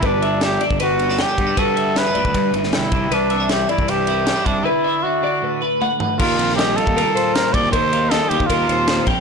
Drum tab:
CC |----------------|----------------|----------------|----------------|
RD |x-x-x-x-x-x-x-x-|x-x-x-x-x-x-x-x-|x-x-x-x-x-x-x-x-|----------------|
SD |----o------oo---|----o------oo---|----o-------o---|----------------|
T1 |----------------|----------------|----------------|------------o---|
FT |----------------|----------------|----------------|--------------o-|
BD |o------o------o-|o------oo-----o-|-------o------o-|----------------|

CC |x---------------|----------------|
RD |--x-x-x-x-x-x-x-|x-x-x-x-x-x-x-x-|
SD |---oo-------o---|----o-------o---|
T1 |----------------|----------------|
FT |----------------|----------------|
BD |o------o------o-|o------oo-----o-|